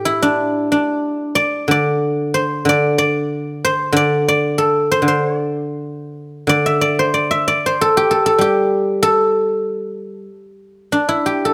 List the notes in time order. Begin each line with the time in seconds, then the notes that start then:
Already playing: A2 G4 A4
0.05 E4
0.22 D4
0.72 D4
1.35 D5
1.68 D3 D5
2.34 C5
2.65 D3 D5
2.98 D5
3.65 C5
3.93 D3 D5
4.28 D5
4.58 A4
4.92 C5
5.02 D3
5.08 C5
5.27 C#5
5.39 D5
6.47 D3 D5
6.66 E5
6.81 D5
6.99 C5
7.14 D5
7.31 E5
7.48 D5
7.66 C5
7.81 A4
7.97 G4
8.11 A4
8.26 A4
8.38 G3 G4
9.03 A4
10.92 D4
11.09 E4
11.26 G4
11.45 A4